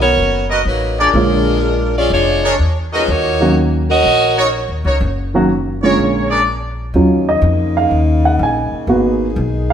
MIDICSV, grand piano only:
0, 0, Header, 1, 2, 480
1, 0, Start_track
1, 0, Key_signature, -6, "minor"
1, 0, Tempo, 483092
1, 1139, Time_signature, 4, 2, 24, 8
1, 9669, End_track
2, 0, Start_track
2, 0, Title_t, "Grand piano"
2, 0, Program_c, 0, 0
2, 0, Note_on_c, 0, 51, 49
2, 0, Note_on_c, 0, 54, 44
2, 0, Note_on_c, 0, 59, 44
2, 0, Note_on_c, 0, 66, 55
2, 0, Note_on_c, 0, 70, 50
2, 435, Note_off_c, 0, 51, 0
2, 436, Note_off_c, 0, 54, 0
2, 438, Note_off_c, 0, 59, 0
2, 440, Note_off_c, 0, 66, 0
2, 440, Note_off_c, 0, 70, 0
2, 1142, Note_on_c, 0, 50, 54
2, 1143, Note_on_c, 0, 56, 50
2, 1147, Note_on_c, 0, 58, 47
2, 1149, Note_on_c, 0, 65, 55
2, 1149, Note_on_c, 0, 73, 46
2, 1880, Note_off_c, 0, 50, 0
2, 1880, Note_off_c, 0, 56, 0
2, 1882, Note_off_c, 0, 58, 0
2, 1883, Note_off_c, 0, 65, 0
2, 1883, Note_off_c, 0, 73, 0
2, 3382, Note_on_c, 0, 54, 57
2, 3384, Note_on_c, 0, 51, 64
2, 3387, Note_on_c, 0, 58, 60
2, 3390, Note_on_c, 0, 61, 62
2, 3394, Note_on_c, 0, 66, 73
2, 3989, Note_off_c, 0, 54, 0
2, 3990, Note_off_c, 0, 51, 0
2, 3992, Note_off_c, 0, 58, 0
2, 3994, Note_off_c, 0, 61, 0
2, 3995, Note_off_c, 0, 66, 0
2, 5306, Note_on_c, 0, 51, 71
2, 5313, Note_on_c, 0, 54, 62
2, 5315, Note_on_c, 0, 58, 64
2, 5318, Note_on_c, 0, 61, 62
2, 5321, Note_on_c, 0, 66, 75
2, 5447, Note_off_c, 0, 51, 0
2, 5450, Note_off_c, 0, 54, 0
2, 5452, Note_off_c, 0, 58, 0
2, 5453, Note_off_c, 0, 61, 0
2, 5455, Note_off_c, 0, 66, 0
2, 5793, Note_on_c, 0, 50, 56
2, 5797, Note_on_c, 0, 56, 50
2, 5798, Note_on_c, 0, 58, 51
2, 5799, Note_on_c, 0, 61, 53
2, 5805, Note_on_c, 0, 65, 61
2, 6394, Note_off_c, 0, 50, 0
2, 6396, Note_off_c, 0, 56, 0
2, 6397, Note_off_c, 0, 58, 0
2, 6397, Note_off_c, 0, 61, 0
2, 6400, Note_off_c, 0, 65, 0
2, 6909, Note_on_c, 0, 54, 44
2, 6911, Note_on_c, 0, 61, 40
2, 6919, Note_on_c, 0, 65, 47
2, 7240, Note_on_c, 0, 75, 70
2, 7272, Note_off_c, 0, 54, 0
2, 7273, Note_off_c, 0, 61, 0
2, 7277, Note_off_c, 0, 65, 0
2, 7679, Note_off_c, 0, 75, 0
2, 7719, Note_on_c, 0, 77, 66
2, 8158, Note_off_c, 0, 77, 0
2, 8200, Note_on_c, 0, 78, 62
2, 8344, Note_off_c, 0, 78, 0
2, 8377, Note_on_c, 0, 80, 74
2, 8805, Note_off_c, 0, 80, 0
2, 8825, Note_on_c, 0, 58, 46
2, 8834, Note_on_c, 0, 59, 46
2, 8836, Note_on_c, 0, 66, 49
2, 9188, Note_off_c, 0, 58, 0
2, 9193, Note_off_c, 0, 59, 0
2, 9194, Note_off_c, 0, 66, 0
2, 9669, End_track
0, 0, End_of_file